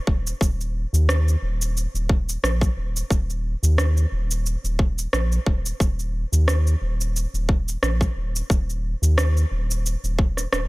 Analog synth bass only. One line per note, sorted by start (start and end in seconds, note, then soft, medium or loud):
0.07 0.33 D#1 loud
0.41 0.85 D#1 loud
0.93 1.36 D#2 loud
1.42 1.87 D#1 medium
1.94 2.37 D#1 medium
2.43 2.69 A#1 medium
2.77 3.03 D#1 medium
3.11 3.55 D#1 loud
3.63 4.05 D#2 loud
4.12 4.56 D#1 loud
4.64 5.07 D#1 medium
5.13 5.39 A#1 loud
5.46 5.72 D#1 medium
5.80 6.25 D#1 loud
6.32 6.75 D#2 loud
6.81 7.26 D#1 loud
7.34 7.76 D#1 medium
7.82 8.08 A#1 loud
8.16 8.42 D#1 medium
8.50 8.94 D#1 loud
9.02 9.45 D#2 loud
9.51 9.96 D#1 loud
10.03 10.46 D#1 medium
10.53 10.68 D#1 loud